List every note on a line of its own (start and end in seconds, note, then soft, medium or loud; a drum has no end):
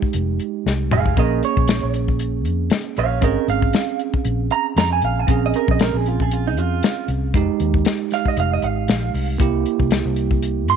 0.00 1.13 G#3 medium
0.00 1.13 D#4 medium
0.00 1.14 G4 medium
0.00 kick medium
0.13 0.38 F1 medium
0.13 closed hi-hat medium
0.39 closed hi-hat medium
0.66 0.89 C2 medium
0.66 snare medium
0.91 1.15 F1 medium
0.91 1.18 G#4 medium
0.91 1.17 F5 medium
0.91 mid tom medium
1.06 kick medium
1.16 1.40 A#1 medium
1.16 3.19 A#3 medium
1.16 3.19 C#4 medium
1.16 3.20 G#4 medium
1.16 1.42 A#4 medium
1.16 1.43 D#5 medium
1.16 kick loud
1.16 closed hi-hat medium
1.43 1.94 C#5 medium
1.43 closed hi-hat medium
1.57 1.80 A#1 medium
1.57 kick medium
1.68 snare loud
1.68 closed hi-hat medium
1.83 2.46 A#1 medium
1.94 closed hi-hat medium
2.08 kick medium
2.19 closed hi-hat medium
2.45 2.69 F2 medium
2.45 closed hi-hat medium
2.70 snare loud
2.70 closed hi-hat medium
2.97 3.21 A#1 medium
2.97 3.23 C#5 medium
2.97 3.23 F5 medium
2.97 closed hi-hat medium
3.21 3.35 G#1 medium
3.21 5.24 C4 medium
3.21 5.25 C#4 medium
3.21 5.25 G#4 medium
3.21 3.47 A#4 medium
3.21 3.48 D#5 medium
3.21 kick loud
3.21 closed hi-hat medium
3.48 3.72 G#1 medium
3.48 3.99 F5 medium
3.48 closed hi-hat medium
3.62 kick medium
3.73 snare loud
3.73 closed hi-hat medium
3.99 closed hi-hat medium
4.14 kick medium
4.25 4.49 A#1 medium
4.25 closed hi-hat medium
4.51 4.66 A#5 loud
4.51 closed hi-hat medium
4.76 5.00 F2 medium
4.76 4.91 A#5 medium
4.76 snare loud
4.76 closed hi-hat medium
4.93 5.03 G#5 medium
5.02 5.26 A#1 loud
5.02 5.19 F5 medium
5.02 closed hi-hat medium
5.19 5.31 G#5 medium
5.27 5.52 A#1 medium
5.27 7.30 C4 medium
5.27 7.31 C#4 medium
5.27 7.31 G#4 medium
5.27 5.44 F5 medium
5.27 kick loud
5.27 closed hi-hat medium
5.46 5.55 D#5 medium
5.54 5.69 A#4 medium
5.54 closed hi-hat medium
5.68 5.92 A#1 loud
5.68 5.81 D#5 medium
5.68 kick medium
5.79 5.97 A#4 medium
5.79 snare loud
5.79 closed hi-hat medium
5.94 6.57 A#1 medium
5.94 6.08 G#4 medium
6.06 6.22 F4 medium
6.06 closed hi-hat medium
6.20 6.33 G#4 medium
6.20 kick medium
6.31 6.46 F4 medium
6.31 closed hi-hat medium
6.47 6.58 D#4 medium
6.57 6.81 F2 medium
6.57 7.08 F4 loud
6.57 closed hi-hat medium
6.83 snare loud
6.83 closed hi-hat medium
7.08 7.32 C2 loud
7.08 closed hi-hat medium
7.34 7.47 F1 medium
7.34 9.36 G#3 medium
7.34 9.37 D#4 medium
7.34 9.37 G4 medium
7.34 kick loud
7.34 closed hi-hat medium
7.60 7.83 D#2 medium
7.60 closed hi-hat medium
7.74 kick medium
7.85 snare loud
7.85 closed hi-hat medium
8.11 8.27 F5 medium
8.11 snare soft
8.11 closed hi-hat medium
8.25 8.38 D#5 medium
8.25 kick medium
8.37 8.61 F1 medium
8.37 8.52 F5 medium
8.37 closed hi-hat medium
8.53 8.64 D#5 medium
8.62 8.86 G#1 medium
8.62 9.38 F5 loud
8.62 closed hi-hat medium
8.88 9.12 A#1 medium
8.88 snare loud
8.88 closed hi-hat medium
9.14 9.37 C2 medium
9.14 open hi-hat medium
9.38 9.63 C2 medium
9.38 10.77 A#3 medium
9.38 10.77 E4 medium
9.38 10.77 G4 medium
9.38 kick loud
9.38 closed hi-hat medium
9.66 closed hi-hat medium
9.80 10.03 C2 loud
9.80 kick medium
9.91 snare loud
9.91 closed hi-hat medium
10.05 10.69 C2 medium
10.16 closed hi-hat medium
10.31 kick medium
10.42 closed hi-hat medium
10.68 10.77 G2 medium
10.68 10.77 C6 medium
10.68 closed hi-hat medium